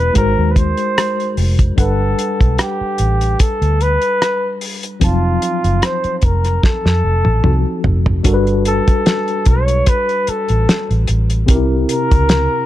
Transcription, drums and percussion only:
0.15 kick, closed hi-hat
0.56 kick, closed hi-hat
0.77 closed hi-hat
0.98 cross-stick, closed hi-hat
1.20 closed hi-hat
1.37 open hi-hat
1.59 kick, closed hi-hat
1.78 kick, closed hi-hat
2.19 closed hi-hat
2.41 kick, closed hi-hat
2.58 cross-stick, closed hi-hat
2.98 closed hi-hat
3.21 closed hi-hat
3.39 kick, closed hi-hat
3.62 closed hi-hat
3.81 closed hi-hat
4.02 closed hi-hat
4.22 cross-stick, closed hi-hat
4.61 open hi-hat
4.83 closed hi-hat
5.01 kick, closed hi-hat
5.42 closed hi-hat
5.64 closed hi-hat
5.82 cross-stick, closed hi-hat
6.04 closed hi-hat
6.22 kick, closed hi-hat
6.44 cross-stick, closed hi-hat
6.63 kick, snare
6.86 snare
7.25 high tom
7.44 mid tom
7.84 floor tom
8.06 floor tom
8.24 kick, closed hi-hat
8.47 closed hi-hat
8.65 closed hi-hat
8.88 kick, closed hi-hat
9.06 snare, closed hi-hat
9.28 closed hi-hat
9.45 kick, closed hi-hat
9.68 closed hi-hat
9.86 kick, closed hi-hat
10.09 closed hi-hat
10.27 closed hi-hat
10.48 closed hi-hat
10.69 snare, closed hi-hat
10.91 closed hi-hat
11.07 closed hi-hat
11.30 closed hi-hat
11.48 kick, closed hi-hat
11.89 closed hi-hat
12.11 kick, closed hi-hat
12.29 snare, closed hi-hat

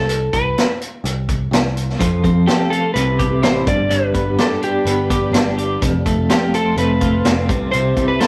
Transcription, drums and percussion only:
0.09 closed hi-hat
0.33 kick, closed hi-hat
0.58 snare, closed hi-hat
0.81 closed hi-hat
1.05 closed hi-hat
1.29 kick, closed hi-hat
1.53 snare, closed hi-hat
1.77 closed hi-hat
1.89 snare
2.01 kick, closed hi-hat
2.24 kick, closed hi-hat
2.48 snare, closed hi-hat
2.72 closed hi-hat
2.96 closed hi-hat
3.19 kick, closed hi-hat
3.43 snare, closed hi-hat
3.67 kick, closed hi-hat
3.90 closed hi-hat
4.14 kick, closed hi-hat
4.38 snare, closed hi-hat
4.62 closed hi-hat
4.86 closed hi-hat
5.10 kick, closed hi-hat
5.34 snare, closed hi-hat
5.58 closed hi-hat
5.82 kick, closed hi-hat
6.06 kick, closed hi-hat
6.30 snare, closed hi-hat
6.54 closed hi-hat
6.77 closed hi-hat
7.01 kick, closed hi-hat
7.25 snare, closed hi-hat
7.49 kick, closed hi-hat
7.73 closed hi-hat
7.97 kick, closed hi-hat
8.20 snare, closed hi-hat

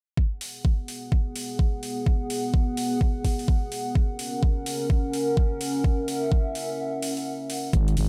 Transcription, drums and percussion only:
0.17 kick
0.41 open hi-hat
0.65 kick
0.88 open hi-hat
1.12 kick
1.36 open hi-hat
1.59 kick
1.83 open hi-hat
2.06 kick
2.30 open hi-hat
2.54 kick
2.77 open hi-hat
3.01 kick
3.25 kick, open hi-hat
3.39 open hi-hat
3.48 kick
3.72 open hi-hat
3.95 kick
4.19 open hi-hat
4.43 kick
4.66 open hi-hat
4.90 kick
5.13 open hi-hat
5.37 kick
5.61 open hi-hat
5.84 kick
6.08 open hi-hat
6.32 kick
6.55 open hi-hat
7.02 open hi-hat
7.17 open hi-hat
7.50 open hi-hat
7.73 kick, closed hi-hat
7.88 closed hi-hat
7.97 open hi-hat

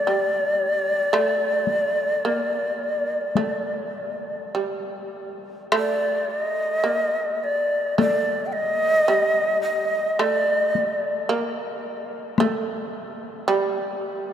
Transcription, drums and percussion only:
1.14 taiko rim
1.67 taiko high
3.35 taiko high
5.72 taiko rim
7.99 taiko high
10.20 taiko rim
10.75 taiko high
12.38 taiko rim, taiko high

